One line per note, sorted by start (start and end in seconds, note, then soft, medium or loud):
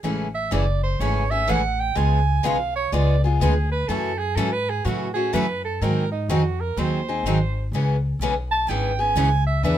0.03 0.51 A1 medium
0.03 0.26 C#3 medium
0.03 0.26 E3 medium
0.03 0.26 G#3 medium
0.03 0.26 A3 medium
0.03 0.26 C#4 medium
0.03 0.27 E4 medium
0.03 0.27 G#4 medium
0.03 0.27 A4 medium
0.34 0.54 E5 medium
0.51 0.99 F#1 medium
0.51 0.64 C#3 medium
0.51 0.64 E3 medium
0.51 0.64 G#3 medium
0.51 0.64 A3 medium
0.51 0.64 C#4 medium
0.51 0.64 E4 medium
0.51 0.64 G#4 medium
0.51 0.64 A4 medium
0.51 0.82 D5 medium
0.83 1.02 C5 medium
0.99 1.47 G#1 medium
0.99 1.22 C#3 medium
0.99 1.23 E3 medium
0.99 1.23 G#3 medium
0.99 1.23 A3 medium
0.99 1.23 C#4 medium
0.99 1.23 E4 medium
0.99 1.23 G#4 medium
0.99 1.23 A4 medium
0.99 1.32 C#5 medium
1.30 1.47 A3 soft
1.30 1.47 C#4 soft
1.30 1.47 G#4 soft
1.30 1.51 E5 loud
1.48 1.95 A1 medium
1.48 1.60 C#3 medium
1.48 1.60 E3 medium
1.48 1.61 G#3 medium
1.48 1.60 A3 medium
1.48 1.60 C#4 medium
1.48 1.61 E4 medium
1.48 1.60 G#4 medium
1.48 1.61 A4 medium
1.48 1.82 F#5 medium
1.80 1.98 G5 medium
1.95 2.43 C#2 medium
1.95 2.18 C#3 medium
1.95 2.18 G#3 medium
1.95 2.18 B3 medium
1.95 2.18 F4 medium
1.95 2.18 G#4 medium
1.95 2.47 G#5 medium
2.43 2.91 B1 medium
2.43 2.56 C#3 medium
2.43 2.56 G#3 loud
2.43 2.56 B3 medium
2.43 2.56 F4 medium
2.43 2.56 G#4 medium
2.43 2.75 F5 medium
2.75 2.94 C#5 medium
2.92 3.39 C#2 medium
2.92 3.15 C#3 medium
2.92 3.15 G#3 medium
2.92 3.14 B3 medium
2.92 3.15 F4 medium
2.92 3.15 G#4 medium
2.92 3.23 D5 medium
3.24 3.40 B3 soft
3.24 3.40 F4 medium
3.24 3.41 F4 medium
3.24 3.40 G#4 medium
3.40 3.87 D2 loud
3.40 3.53 C#3 medium
3.40 3.53 G#3 medium
3.40 3.53 B3 medium
3.40 3.53 F4 medium
3.40 3.71 G#4 medium
3.40 3.53 G#4 medium
3.71 3.89 B4 medium
3.88 4.35 F#2 medium
3.88 4.11 C#3 medium
3.88 4.11 E3 medium
3.88 4.11 F#3 medium
3.88 4.11 A3 medium
3.88 4.11 C#4 medium
3.88 4.12 E4 medium
3.88 4.11 F#4 medium
3.88 4.20 A4 medium
3.88 4.12 A4 medium
4.18 4.37 G#4 medium
4.36 4.83 G#2 medium
4.36 4.49 C#3 medium
4.36 4.49 E3 medium
4.36 4.49 F#3 medium
4.36 4.49 A3 medium
4.36 4.49 C#4 medium
4.36 4.50 E4 medium
4.36 4.49 F#4 medium
4.36 4.53 A4 medium
4.36 4.50 A4 medium
4.52 4.71 B4 medium
4.70 4.86 G#4 medium
4.85 5.32 A2 medium
4.85 5.07 C#3 medium
4.85 5.07 E3 medium
4.85 5.08 F#3 medium
4.85 5.07 A3 medium
4.85 5.07 C#4 medium
4.85 5.08 E4 medium
4.85 5.13 F#4 medium
4.85 5.07 F#4 medium
4.85 5.08 A4 medium
5.14 5.32 A3 soft
5.14 5.32 C#4 soft
5.14 5.32 F#4 medium
5.14 5.35 G#4 medium
5.33 5.80 F#2 medium
5.33 5.44 C#3 medium
5.33 5.45 E3 medium
5.33 5.45 F#3 medium
5.33 5.45 A3 medium
5.33 5.45 C#4 medium
5.33 5.46 E4 loud
5.33 5.45 F#4 medium
5.33 5.46 A4 medium
5.33 5.64 B4 medium
5.64 5.83 A4 medium
5.81 6.28 G#2 medium
5.81 6.03 D#3 medium
5.81 6.03 F#3 medium
5.81 6.03 C4 medium
5.81 6.03 D#4 medium
5.81 6.04 G#4 medium
5.81 6.11 A#4 medium
6.11 6.31 D#4 medium
6.28 6.75 F2 medium
6.28 6.41 D#3 medium
6.28 6.41 F#3 medium
6.28 6.41 C4 medium
6.28 6.41 D#4 medium
6.28 6.62 F#4 medium
6.28 6.41 G#4 loud
6.60 6.80 A#4 medium
6.77 7.23 D#2 medium
6.77 6.99 D#3 medium
6.77 6.99 F#3 medium
6.77 6.99 C4 medium
6.77 6.99 D#4 medium
6.77 7.00 G#4 medium
6.77 7.74 C5 medium
7.08 7.25 C4 soft
7.08 7.25 D#4 medium
7.08 7.25 G#4 medium
7.23 7.71 G#1 medium
7.23 7.37 D#3 medium
7.23 7.37 F#3 medium
7.23 7.37 C4 medium
7.23 7.37 D#4 medium
7.23 7.38 G#4 medium
7.72 8.19 C#2 medium
7.72 7.96 C#3 medium
7.72 7.96 E3 medium
7.72 7.95 G#3 medium
7.72 7.96 B3 medium
7.72 7.96 C#4 medium
7.72 7.96 E4 medium
7.72 7.96 G#4 medium
8.19 8.66 B1 medium
8.19 8.33 C#3 medium
8.19 8.33 E3 medium
8.19 8.33 G#3 medium
8.19 8.33 B3 medium
8.19 8.33 C#4 loud
8.19 8.33 E4 medium
8.19 8.33 G#4 medium
8.51 8.71 A5 loud
8.68 9.15 G#1 medium
8.68 8.91 C#3 medium
8.68 8.91 E3 medium
8.68 8.90 G#3 medium
8.68 8.91 B3 medium
8.68 8.92 C#4 medium
8.68 8.90 E4 medium
8.68 8.91 G#4 medium
8.68 9.02 G5 medium
8.99 9.16 B3 soft
8.99 9.16 C#4 soft
8.99 9.16 G#4 medium
8.99 9.46 G#5 loud
9.15 9.62 C#2 medium
9.15 9.28 C#3 medium
9.15 9.28 E3 medium
9.15 9.28 G#3 medium
9.15 9.28 B3 medium
9.15 9.28 C#4 medium
9.15 9.28 E4 loud
9.15 9.29 G#4 medium
9.47 9.63 E5 medium
9.63 9.78 E2 medium
9.63 9.78 E3 medium
9.63 9.78 B3 medium
9.63 9.78 D4 medium
9.63 9.78 G#4 medium
9.63 9.78 B4 medium
9.63 9.78 E5 medium